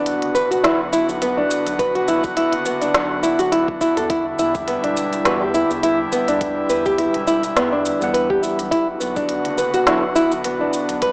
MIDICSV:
0, 0, Header, 1, 6, 480
1, 0, Start_track
1, 0, Key_signature, 1, "minor"
1, 0, Tempo, 576923
1, 1493, Time_signature, 4, 2, 24, 8
1, 9254, End_track
2, 0, Start_track
2, 0, Title_t, "Nylon-string guitar"
2, 0, Program_c, 0, 24
2, 0, Note_on_c, 0, 62, 78
2, 281, Note_off_c, 0, 62, 0
2, 289, Note_on_c, 0, 71, 77
2, 411, Note_off_c, 0, 71, 0
2, 423, Note_on_c, 0, 66, 71
2, 521, Note_off_c, 0, 66, 0
2, 530, Note_on_c, 0, 64, 86
2, 658, Note_off_c, 0, 64, 0
2, 772, Note_on_c, 0, 64, 96
2, 899, Note_off_c, 0, 64, 0
2, 1015, Note_on_c, 0, 59, 82
2, 1140, Note_off_c, 0, 59, 0
2, 1146, Note_on_c, 0, 62, 78
2, 1482, Note_off_c, 0, 62, 0
2, 1491, Note_on_c, 0, 71, 81
2, 1612, Note_off_c, 0, 71, 0
2, 1624, Note_on_c, 0, 66, 74
2, 1721, Note_off_c, 0, 66, 0
2, 1732, Note_on_c, 0, 64, 74
2, 1859, Note_off_c, 0, 64, 0
2, 1971, Note_on_c, 0, 64, 96
2, 2098, Note_off_c, 0, 64, 0
2, 2213, Note_on_c, 0, 59, 69
2, 2339, Note_off_c, 0, 59, 0
2, 2342, Note_on_c, 0, 62, 71
2, 2680, Note_off_c, 0, 62, 0
2, 2689, Note_on_c, 0, 64, 77
2, 2817, Note_off_c, 0, 64, 0
2, 2822, Note_on_c, 0, 66, 80
2, 2926, Note_off_c, 0, 66, 0
2, 2928, Note_on_c, 0, 64, 76
2, 3050, Note_off_c, 0, 64, 0
2, 3171, Note_on_c, 0, 64, 95
2, 3298, Note_off_c, 0, 64, 0
2, 3305, Note_on_c, 0, 69, 76
2, 3402, Note_off_c, 0, 69, 0
2, 3411, Note_on_c, 0, 64, 82
2, 3538, Note_off_c, 0, 64, 0
2, 3653, Note_on_c, 0, 64, 100
2, 3780, Note_off_c, 0, 64, 0
2, 3892, Note_on_c, 0, 59, 80
2, 4019, Note_off_c, 0, 59, 0
2, 4026, Note_on_c, 0, 62, 75
2, 4362, Note_off_c, 0, 62, 0
2, 4372, Note_on_c, 0, 71, 82
2, 4492, Note_off_c, 0, 71, 0
2, 4504, Note_on_c, 0, 67, 71
2, 4601, Note_off_c, 0, 67, 0
2, 4613, Note_on_c, 0, 64, 73
2, 4739, Note_off_c, 0, 64, 0
2, 4852, Note_on_c, 0, 64, 99
2, 4979, Note_off_c, 0, 64, 0
2, 5096, Note_on_c, 0, 59, 76
2, 5221, Note_off_c, 0, 59, 0
2, 5229, Note_on_c, 0, 62, 84
2, 5563, Note_off_c, 0, 62, 0
2, 5571, Note_on_c, 0, 71, 76
2, 5692, Note_off_c, 0, 71, 0
2, 5705, Note_on_c, 0, 67, 84
2, 5801, Note_off_c, 0, 67, 0
2, 5811, Note_on_c, 0, 64, 77
2, 5938, Note_off_c, 0, 64, 0
2, 6053, Note_on_c, 0, 64, 101
2, 6179, Note_off_c, 0, 64, 0
2, 6293, Note_on_c, 0, 59, 84
2, 6420, Note_off_c, 0, 59, 0
2, 6426, Note_on_c, 0, 62, 68
2, 6762, Note_off_c, 0, 62, 0
2, 6771, Note_on_c, 0, 71, 86
2, 6892, Note_off_c, 0, 71, 0
2, 6905, Note_on_c, 0, 67, 81
2, 7002, Note_off_c, 0, 67, 0
2, 7011, Note_on_c, 0, 64, 70
2, 7138, Note_off_c, 0, 64, 0
2, 7249, Note_on_c, 0, 64, 105
2, 7377, Note_off_c, 0, 64, 0
2, 7490, Note_on_c, 0, 59, 74
2, 7618, Note_off_c, 0, 59, 0
2, 7624, Note_on_c, 0, 62, 75
2, 7961, Note_off_c, 0, 62, 0
2, 7970, Note_on_c, 0, 71, 76
2, 8091, Note_off_c, 0, 71, 0
2, 8103, Note_on_c, 0, 66, 81
2, 8201, Note_off_c, 0, 66, 0
2, 8209, Note_on_c, 0, 64, 82
2, 8337, Note_off_c, 0, 64, 0
2, 8450, Note_on_c, 0, 64, 97
2, 8578, Note_off_c, 0, 64, 0
2, 8691, Note_on_c, 0, 59, 79
2, 8818, Note_off_c, 0, 59, 0
2, 8826, Note_on_c, 0, 62, 81
2, 9162, Note_off_c, 0, 62, 0
2, 9173, Note_on_c, 0, 71, 86
2, 9254, Note_off_c, 0, 71, 0
2, 9254, End_track
3, 0, Start_track
3, 0, Title_t, "Analog synth pad"
3, 0, Program_c, 1, 89
3, 0, Note_on_c, 1, 50, 77
3, 0, Note_on_c, 1, 59, 69
3, 0, Note_on_c, 1, 66, 83
3, 3377, Note_off_c, 1, 59, 0
3, 3377, Note_off_c, 1, 66, 0
3, 3408, Note_on_c, 1, 55, 71
3, 3408, Note_on_c, 1, 64, 89
3, 7217, Note_off_c, 1, 55, 0
3, 7217, Note_off_c, 1, 64, 0
3, 7221, Note_off_c, 1, 50, 0
3, 7256, Note_on_c, 1, 66, 83
3, 7257, Note_on_c, 1, 50, 80
3, 7257, Note_on_c, 1, 59, 77
3, 9155, Note_off_c, 1, 66, 0
3, 9169, Note_on_c, 1, 64, 90
3, 9254, Note_off_c, 1, 50, 0
3, 9254, Note_off_c, 1, 59, 0
3, 9254, Note_off_c, 1, 64, 0
3, 9254, End_track
4, 0, Start_track
4, 0, Title_t, "Tine electric piano"
4, 0, Program_c, 2, 4
4, 4363, Note_on_c, 2, 52, 90
4, 4368, Note_on_c, 2, 55, 77
4, 4372, Note_on_c, 2, 59, 78
4, 4375, Note_on_c, 2, 62, 81
4, 4381, Note_on_c, 2, 66, 99
4, 4505, Note_off_c, 2, 52, 0
4, 4508, Note_off_c, 2, 55, 0
4, 4510, Note_off_c, 2, 59, 0
4, 4512, Note_off_c, 2, 62, 0
4, 4515, Note_off_c, 2, 66, 0
4, 6653, Note_on_c, 2, 52, 74
4, 6660, Note_on_c, 2, 55, 70
4, 6667, Note_on_c, 2, 59, 68
4, 6676, Note_on_c, 2, 62, 68
4, 6686, Note_on_c, 2, 78, 87
4, 7233, Note_off_c, 2, 52, 0
4, 7237, Note_off_c, 2, 55, 0
4, 7241, Note_off_c, 2, 59, 0
4, 7245, Note_off_c, 2, 62, 0
4, 7250, Note_off_c, 2, 78, 0
4, 8203, Note_on_c, 2, 50, 92
4, 8207, Note_on_c, 2, 54, 87
4, 8210, Note_on_c, 2, 59, 81
4, 8215, Note_on_c, 2, 62, 82
4, 8220, Note_on_c, 2, 66, 102
4, 8346, Note_off_c, 2, 50, 0
4, 8348, Note_off_c, 2, 54, 0
4, 8349, Note_off_c, 2, 59, 0
4, 8352, Note_off_c, 2, 62, 0
4, 8354, Note_off_c, 2, 66, 0
4, 9254, End_track
5, 0, Start_track
5, 0, Title_t, "Analog synth bass"
5, 0, Program_c, 3, 38
5, 0, Note_on_c, 3, 35, 96
5, 140, Note_off_c, 3, 35, 0
5, 184, Note_on_c, 3, 30, 96
5, 495, Note_off_c, 3, 30, 0
5, 531, Note_on_c, 3, 35, 86
5, 860, Note_off_c, 3, 35, 0
5, 906, Note_on_c, 3, 35, 92
5, 1216, Note_off_c, 3, 35, 0
5, 1384, Note_on_c, 3, 35, 78
5, 1695, Note_off_c, 3, 35, 0
5, 1731, Note_on_c, 3, 35, 100
5, 2060, Note_off_c, 3, 35, 0
5, 2102, Note_on_c, 3, 30, 94
5, 2414, Note_off_c, 3, 30, 0
5, 2450, Note_on_c, 3, 35, 92
5, 2779, Note_off_c, 3, 35, 0
5, 2827, Note_on_c, 3, 35, 81
5, 3137, Note_off_c, 3, 35, 0
5, 3307, Note_on_c, 3, 40, 76
5, 3617, Note_off_c, 3, 40, 0
5, 3651, Note_on_c, 3, 40, 90
5, 3980, Note_off_c, 3, 40, 0
5, 4026, Note_on_c, 3, 28, 88
5, 4336, Note_off_c, 3, 28, 0
5, 4372, Note_on_c, 3, 40, 91
5, 4700, Note_off_c, 3, 40, 0
5, 4746, Note_on_c, 3, 40, 86
5, 5056, Note_off_c, 3, 40, 0
5, 5225, Note_on_c, 3, 40, 81
5, 5536, Note_off_c, 3, 40, 0
5, 5571, Note_on_c, 3, 40, 93
5, 5900, Note_off_c, 3, 40, 0
5, 5946, Note_on_c, 3, 28, 95
5, 6257, Note_off_c, 3, 28, 0
5, 6292, Note_on_c, 3, 40, 84
5, 6620, Note_off_c, 3, 40, 0
5, 6669, Note_on_c, 3, 40, 87
5, 6978, Note_off_c, 3, 40, 0
5, 7148, Note_on_c, 3, 35, 85
5, 7457, Note_off_c, 3, 35, 0
5, 7496, Note_on_c, 3, 35, 94
5, 7822, Note_off_c, 3, 35, 0
5, 7866, Note_on_c, 3, 30, 96
5, 8176, Note_off_c, 3, 30, 0
5, 8214, Note_on_c, 3, 35, 96
5, 8541, Note_off_c, 3, 35, 0
5, 8586, Note_on_c, 3, 35, 86
5, 8896, Note_off_c, 3, 35, 0
5, 9065, Note_on_c, 3, 35, 84
5, 9254, Note_off_c, 3, 35, 0
5, 9254, End_track
6, 0, Start_track
6, 0, Title_t, "Drums"
6, 51, Note_on_c, 9, 42, 66
6, 52, Note_on_c, 9, 69, 34
6, 134, Note_off_c, 9, 42, 0
6, 135, Note_off_c, 9, 69, 0
6, 185, Note_on_c, 9, 42, 45
6, 268, Note_off_c, 9, 42, 0
6, 294, Note_on_c, 9, 69, 77
6, 377, Note_off_c, 9, 69, 0
6, 429, Note_on_c, 9, 42, 32
6, 430, Note_on_c, 9, 69, 46
6, 513, Note_off_c, 9, 42, 0
6, 514, Note_off_c, 9, 69, 0
6, 535, Note_on_c, 9, 38, 79
6, 535, Note_on_c, 9, 42, 65
6, 536, Note_on_c, 9, 69, 37
6, 618, Note_off_c, 9, 38, 0
6, 618, Note_off_c, 9, 42, 0
6, 619, Note_off_c, 9, 69, 0
6, 773, Note_on_c, 9, 69, 86
6, 856, Note_off_c, 9, 69, 0
6, 907, Note_on_c, 9, 69, 47
6, 990, Note_off_c, 9, 69, 0
6, 1013, Note_on_c, 9, 42, 62
6, 1014, Note_on_c, 9, 69, 35
6, 1096, Note_off_c, 9, 42, 0
6, 1097, Note_off_c, 9, 69, 0
6, 1252, Note_on_c, 9, 69, 81
6, 1336, Note_off_c, 9, 69, 0
6, 1385, Note_on_c, 9, 42, 43
6, 1387, Note_on_c, 9, 69, 44
6, 1469, Note_off_c, 9, 42, 0
6, 1470, Note_off_c, 9, 69, 0
6, 1490, Note_on_c, 9, 36, 116
6, 1492, Note_on_c, 9, 42, 63
6, 1493, Note_on_c, 9, 69, 34
6, 1573, Note_off_c, 9, 36, 0
6, 1575, Note_off_c, 9, 42, 0
6, 1576, Note_off_c, 9, 69, 0
6, 1625, Note_on_c, 9, 42, 29
6, 1708, Note_off_c, 9, 42, 0
6, 1730, Note_on_c, 9, 69, 79
6, 1813, Note_off_c, 9, 69, 0
6, 1861, Note_on_c, 9, 69, 46
6, 1863, Note_on_c, 9, 36, 107
6, 1944, Note_off_c, 9, 69, 0
6, 1946, Note_off_c, 9, 36, 0
6, 1970, Note_on_c, 9, 42, 66
6, 1971, Note_on_c, 9, 69, 36
6, 2053, Note_off_c, 9, 42, 0
6, 2054, Note_off_c, 9, 69, 0
6, 2101, Note_on_c, 9, 42, 44
6, 2184, Note_off_c, 9, 42, 0
6, 2209, Note_on_c, 9, 69, 72
6, 2292, Note_off_c, 9, 69, 0
6, 2343, Note_on_c, 9, 42, 29
6, 2344, Note_on_c, 9, 69, 47
6, 2426, Note_off_c, 9, 42, 0
6, 2427, Note_off_c, 9, 69, 0
6, 2450, Note_on_c, 9, 38, 79
6, 2450, Note_on_c, 9, 42, 64
6, 2451, Note_on_c, 9, 69, 34
6, 2533, Note_off_c, 9, 38, 0
6, 2533, Note_off_c, 9, 42, 0
6, 2534, Note_off_c, 9, 69, 0
6, 2689, Note_on_c, 9, 69, 82
6, 2773, Note_off_c, 9, 69, 0
6, 2821, Note_on_c, 9, 42, 30
6, 2822, Note_on_c, 9, 69, 45
6, 2904, Note_off_c, 9, 42, 0
6, 2905, Note_off_c, 9, 69, 0
6, 2931, Note_on_c, 9, 42, 62
6, 2932, Note_on_c, 9, 69, 33
6, 3015, Note_off_c, 9, 42, 0
6, 3016, Note_off_c, 9, 69, 0
6, 3063, Note_on_c, 9, 36, 105
6, 3147, Note_off_c, 9, 36, 0
6, 3170, Note_on_c, 9, 36, 63
6, 3170, Note_on_c, 9, 69, 78
6, 3253, Note_off_c, 9, 36, 0
6, 3254, Note_off_c, 9, 69, 0
6, 3304, Note_on_c, 9, 42, 43
6, 3305, Note_on_c, 9, 69, 46
6, 3387, Note_off_c, 9, 42, 0
6, 3388, Note_off_c, 9, 69, 0
6, 3410, Note_on_c, 9, 36, 127
6, 3410, Note_on_c, 9, 42, 63
6, 3411, Note_on_c, 9, 69, 33
6, 3493, Note_off_c, 9, 36, 0
6, 3493, Note_off_c, 9, 42, 0
6, 3494, Note_off_c, 9, 69, 0
6, 3650, Note_on_c, 9, 69, 75
6, 3734, Note_off_c, 9, 69, 0
6, 3783, Note_on_c, 9, 69, 42
6, 3784, Note_on_c, 9, 36, 100
6, 3866, Note_off_c, 9, 69, 0
6, 3867, Note_off_c, 9, 36, 0
6, 3891, Note_on_c, 9, 42, 62
6, 3892, Note_on_c, 9, 69, 35
6, 3974, Note_off_c, 9, 42, 0
6, 3975, Note_off_c, 9, 69, 0
6, 4025, Note_on_c, 9, 42, 43
6, 4108, Note_off_c, 9, 42, 0
6, 4132, Note_on_c, 9, 69, 77
6, 4215, Note_off_c, 9, 69, 0
6, 4265, Note_on_c, 9, 42, 31
6, 4267, Note_on_c, 9, 69, 45
6, 4349, Note_off_c, 9, 42, 0
6, 4350, Note_off_c, 9, 69, 0
6, 4371, Note_on_c, 9, 38, 71
6, 4371, Note_on_c, 9, 42, 60
6, 4372, Note_on_c, 9, 69, 32
6, 4454, Note_off_c, 9, 38, 0
6, 4454, Note_off_c, 9, 42, 0
6, 4455, Note_off_c, 9, 69, 0
6, 4613, Note_on_c, 9, 69, 78
6, 4696, Note_off_c, 9, 69, 0
6, 4747, Note_on_c, 9, 69, 44
6, 4830, Note_off_c, 9, 69, 0
6, 4853, Note_on_c, 9, 42, 64
6, 4854, Note_on_c, 9, 69, 33
6, 4936, Note_off_c, 9, 42, 0
6, 4937, Note_off_c, 9, 69, 0
6, 5093, Note_on_c, 9, 69, 76
6, 5176, Note_off_c, 9, 69, 0
6, 5226, Note_on_c, 9, 42, 40
6, 5227, Note_on_c, 9, 69, 44
6, 5309, Note_off_c, 9, 42, 0
6, 5310, Note_off_c, 9, 69, 0
6, 5333, Note_on_c, 9, 36, 121
6, 5333, Note_on_c, 9, 42, 63
6, 5334, Note_on_c, 9, 69, 33
6, 5416, Note_off_c, 9, 36, 0
6, 5416, Note_off_c, 9, 42, 0
6, 5417, Note_off_c, 9, 69, 0
6, 5571, Note_on_c, 9, 69, 77
6, 5654, Note_off_c, 9, 69, 0
6, 5705, Note_on_c, 9, 69, 45
6, 5706, Note_on_c, 9, 36, 102
6, 5789, Note_off_c, 9, 36, 0
6, 5789, Note_off_c, 9, 69, 0
6, 5811, Note_on_c, 9, 42, 70
6, 5812, Note_on_c, 9, 69, 32
6, 5894, Note_off_c, 9, 42, 0
6, 5895, Note_off_c, 9, 69, 0
6, 5942, Note_on_c, 9, 42, 45
6, 6026, Note_off_c, 9, 42, 0
6, 6051, Note_on_c, 9, 69, 75
6, 6134, Note_off_c, 9, 69, 0
6, 6185, Note_on_c, 9, 42, 30
6, 6186, Note_on_c, 9, 69, 44
6, 6268, Note_off_c, 9, 42, 0
6, 6269, Note_off_c, 9, 69, 0
6, 6295, Note_on_c, 9, 38, 74
6, 6295, Note_on_c, 9, 42, 69
6, 6296, Note_on_c, 9, 69, 33
6, 6378, Note_off_c, 9, 38, 0
6, 6378, Note_off_c, 9, 42, 0
6, 6379, Note_off_c, 9, 69, 0
6, 6535, Note_on_c, 9, 69, 81
6, 6618, Note_off_c, 9, 69, 0
6, 6669, Note_on_c, 9, 69, 43
6, 6752, Note_off_c, 9, 69, 0
6, 6776, Note_on_c, 9, 42, 64
6, 6777, Note_on_c, 9, 69, 32
6, 6859, Note_off_c, 9, 42, 0
6, 6860, Note_off_c, 9, 69, 0
6, 6906, Note_on_c, 9, 36, 89
6, 6989, Note_off_c, 9, 36, 0
6, 7015, Note_on_c, 9, 69, 76
6, 7098, Note_off_c, 9, 69, 0
6, 7147, Note_on_c, 9, 42, 42
6, 7148, Note_on_c, 9, 69, 41
6, 7230, Note_off_c, 9, 42, 0
6, 7231, Note_off_c, 9, 69, 0
6, 7252, Note_on_c, 9, 36, 114
6, 7254, Note_on_c, 9, 42, 69
6, 7255, Note_on_c, 9, 69, 30
6, 7335, Note_off_c, 9, 36, 0
6, 7337, Note_off_c, 9, 42, 0
6, 7338, Note_off_c, 9, 69, 0
6, 7493, Note_on_c, 9, 69, 75
6, 7577, Note_off_c, 9, 69, 0
6, 7624, Note_on_c, 9, 69, 40
6, 7625, Note_on_c, 9, 36, 100
6, 7707, Note_off_c, 9, 69, 0
6, 7708, Note_off_c, 9, 36, 0
6, 7727, Note_on_c, 9, 42, 66
6, 7728, Note_on_c, 9, 69, 34
6, 7810, Note_off_c, 9, 42, 0
6, 7812, Note_off_c, 9, 69, 0
6, 7862, Note_on_c, 9, 42, 46
6, 7946, Note_off_c, 9, 42, 0
6, 7969, Note_on_c, 9, 69, 72
6, 8053, Note_off_c, 9, 69, 0
6, 8102, Note_on_c, 9, 42, 31
6, 8103, Note_on_c, 9, 69, 43
6, 8185, Note_off_c, 9, 42, 0
6, 8186, Note_off_c, 9, 69, 0
6, 8210, Note_on_c, 9, 38, 76
6, 8210, Note_on_c, 9, 42, 70
6, 8211, Note_on_c, 9, 69, 31
6, 8293, Note_off_c, 9, 38, 0
6, 8293, Note_off_c, 9, 42, 0
6, 8294, Note_off_c, 9, 69, 0
6, 8450, Note_on_c, 9, 69, 78
6, 8533, Note_off_c, 9, 69, 0
6, 8583, Note_on_c, 9, 69, 41
6, 8666, Note_off_c, 9, 69, 0
6, 8689, Note_on_c, 9, 42, 66
6, 8690, Note_on_c, 9, 69, 33
6, 8772, Note_off_c, 9, 42, 0
6, 8774, Note_off_c, 9, 69, 0
6, 8929, Note_on_c, 9, 69, 75
6, 9013, Note_off_c, 9, 69, 0
6, 9060, Note_on_c, 9, 42, 43
6, 9061, Note_on_c, 9, 69, 40
6, 9143, Note_off_c, 9, 42, 0
6, 9144, Note_off_c, 9, 69, 0
6, 9167, Note_on_c, 9, 42, 69
6, 9168, Note_on_c, 9, 69, 31
6, 9170, Note_on_c, 9, 36, 113
6, 9250, Note_off_c, 9, 42, 0
6, 9252, Note_off_c, 9, 69, 0
6, 9253, Note_off_c, 9, 36, 0
6, 9254, End_track
0, 0, End_of_file